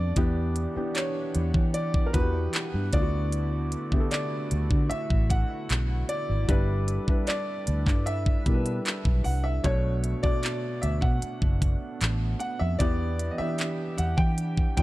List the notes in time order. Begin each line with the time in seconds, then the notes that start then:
Already playing: F2 A3 B3 D4 D5
0.16 E2 E3 B3 D4 G4 F#5, kick, closed hi-hat
0.56 closed hi-hat
0.75 E3 B3 D4 G4, muted fingered electric bass stroke
0.95 C#5, clap, closed hi-hat
1.35 E2, closed hi-hat
1.54 E3, kick
1.74 D5, closed hi-hat
1.94 kick
2.06 A#4
2.13 E2 E3 B3 D4 F#4 B4, kick, closed hi-hat
2.22 G4
2.53 clap, closed hi-hat
2.74 G2
2.93 D2 D3 A3 B3 E4 F4 F#4 D5, kick, closed hi-hat
3.01 F#4
3.32 closed hi-hat
3.72 closed hi-hat
3.91 D3 B3 E4 G4, muted fingered electric bass stroke, kick
4.00 A4
4.11 D5, clap, closed hi-hat
4.51 D2, closed hi-hat
4.71 D3, kick
4.90 E5, muted fingered electric bass stroke, closed hi-hat
5.10 A1, kick
5.30 F#5, kick, closed hi-hat
5.70 B1, clap, closed hi-hat
6.09 D5, closed hi-hat
6.29 G#1
6.48 G1 G3 D4 E4 A4 B4, kick, closed hi-hat
6.88 closed hi-hat
7.08 G3 D4 E4 B4, muted fingered electric bass stroke, kick
7.27 D5, clap, closed hi-hat
7.67 D2, closed hi-hat
7.87 G2, kick, clap
8.06 E5, closed hi-hat
8.26 kick
8.46 B2 G3 D4 E4 A#4, kick, closed hi-hat
8.54 B4
8.66 closed hi-hat
8.86 clap, closed hi-hat
9.05 B1, kick
9.24 C2 F#5, open hi-hat
9.44 E5
9.64 B1 B2 A3 B3 D4 C#5, kick, closed hi-hat
10.04 closed hi-hat
10.23 B2 A3 D4 D5, muted fingered electric bass stroke, kick
10.43 clap, closed hi-hat
10.82 D2 E5, closed hi-hat
11.01 B2 F#5, kick
11.22 muted fingered electric bass stroke, closed hi-hat
11.42 F#1, kick
11.62 kick, closed hi-hat
12.01 A1, clap, closed hi-hat
12.39 F#5, closed hi-hat
12.59 F2 E5
12.79 E2 E3 B3 G4 D5, kick, closed hi-hat
13.19 closed hi-hat
13.31 D#5
13.38 E3 B3 G4 D5 E5, muted fingered electric bass stroke
13.59 clap, closed hi-hat
13.98 E2 F#5, closed hi-hat
14.17 E3 G5, kick
14.38 closed hi-hat
14.57 kick
14.77 E2 E3 B3 F#4 D5 G5, kick, closed hi-hat